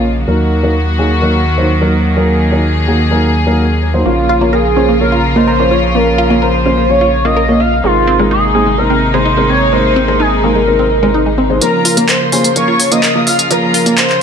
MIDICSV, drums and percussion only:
0, 0, Header, 1, 2, 480
1, 0, Start_track
1, 0, Key_signature, -5, "minor"
1, 0, Tempo, 472441
1, 281, Time_signature, 4, 2, 24, 8
1, 14453, End_track
2, 0, Start_track
2, 0, Title_t, "Drums"
2, 11801, Note_on_c, 9, 42, 52
2, 11902, Note_off_c, 9, 42, 0
2, 12040, Note_on_c, 9, 46, 96
2, 12142, Note_off_c, 9, 46, 0
2, 12163, Note_on_c, 9, 42, 63
2, 12264, Note_off_c, 9, 42, 0
2, 12281, Note_on_c, 9, 39, 118
2, 12281, Note_on_c, 9, 42, 54
2, 12382, Note_off_c, 9, 39, 0
2, 12383, Note_off_c, 9, 42, 0
2, 12521, Note_on_c, 9, 46, 90
2, 12623, Note_off_c, 9, 46, 0
2, 12643, Note_on_c, 9, 42, 69
2, 12745, Note_off_c, 9, 42, 0
2, 12761, Note_on_c, 9, 42, 55
2, 12862, Note_off_c, 9, 42, 0
2, 13001, Note_on_c, 9, 46, 102
2, 13102, Note_off_c, 9, 46, 0
2, 13123, Note_on_c, 9, 42, 67
2, 13224, Note_off_c, 9, 42, 0
2, 13241, Note_on_c, 9, 39, 119
2, 13241, Note_on_c, 9, 42, 51
2, 13342, Note_off_c, 9, 39, 0
2, 13343, Note_off_c, 9, 42, 0
2, 13481, Note_on_c, 9, 46, 93
2, 13583, Note_off_c, 9, 46, 0
2, 13604, Note_on_c, 9, 42, 66
2, 13705, Note_off_c, 9, 42, 0
2, 13722, Note_on_c, 9, 42, 52
2, 13824, Note_off_c, 9, 42, 0
2, 13962, Note_on_c, 9, 46, 109
2, 14063, Note_off_c, 9, 46, 0
2, 14084, Note_on_c, 9, 42, 64
2, 14185, Note_off_c, 9, 42, 0
2, 14201, Note_on_c, 9, 39, 124
2, 14201, Note_on_c, 9, 42, 52
2, 14303, Note_off_c, 9, 39, 0
2, 14303, Note_off_c, 9, 42, 0
2, 14323, Note_on_c, 9, 39, 38
2, 14425, Note_off_c, 9, 39, 0
2, 14453, End_track
0, 0, End_of_file